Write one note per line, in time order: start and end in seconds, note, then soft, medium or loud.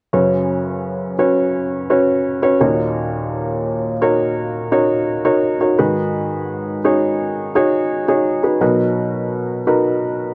0.13 2.57 F#2 medium
0.13 2.57 C#3 medium
0.13 1.13 C#4 medium
0.13 1.13 F#4 medium
0.13 1.13 B4 medium
0.13 1.13 C#5 medium
1.19 1.85 C#4 medium
1.19 1.85 F#4 medium
1.19 1.85 B4 medium
1.19 1.86 C#5 medium
1.90 2.40 C#4 medium
1.90 2.40 F#4 medium
1.90 2.40 B4 medium
1.90 2.40 C#5 medium
2.42 2.61 C#4 medium
2.42 2.59 F#4 medium
2.42 2.61 B4 medium
2.42 2.59 C#5 medium
2.61 5.39 D#2 medium
2.61 5.39 A#2 medium
2.61 3.93 D#4 medium
2.61 3.93 F#4 medium
2.61 3.93 A#4 medium
2.61 3.93 C#5 medium
4.02 4.68 D#4 medium
4.02 4.68 F#4 medium
4.02 4.68 A#4 medium
4.02 4.68 C#5 medium
4.72 5.22 D#4 medium
4.72 5.22 F#4 medium
4.72 5.22 A#4 medium
4.72 5.22 C#5 medium
5.25 5.58 D#4 medium
5.25 5.58 F#4 medium
5.25 5.58 A#4 medium
5.25 5.58 C#5 medium
5.60 5.77 D#4 medium
5.60 5.77 F#4 medium
5.60 5.77 A#4 soft
5.60 5.77 C#5 medium
5.78 8.57 G#2 medium
5.78 8.57 D#3 medium
5.78 6.78 D#4 medium
5.78 6.78 F#4 medium
5.78 6.78 G#4 medium
5.78 6.78 B4 medium
6.85 7.51 D#4 medium
6.85 7.51 F#4 medium
6.85 7.51 G#4 medium
6.85 7.51 C#5 medium
7.55 8.05 D#4 medium
7.55 8.05 F#4 medium
7.55 8.05 G#4 medium
7.55 8.05 C#5 medium
8.08 8.41 D#4 medium
8.08 8.41 F#4 medium
8.08 8.41 G#4 medium
8.08 8.41 C#5 medium
8.43 8.59 D#4 medium
8.43 8.59 F#4 soft
8.43 8.60 G#4 soft
8.43 8.60 B4 medium
8.61 10.34 B2 medium
8.61 10.34 F#3 medium
8.61 9.60 D#4 medium
8.61 9.60 F#4 medium
8.61 9.60 A#4 medium
8.61 9.60 B4 medium
9.67 10.33 D#4 medium
9.67 10.33 F#4 medium
9.67 10.33 A#4 medium
9.67 10.33 B4 medium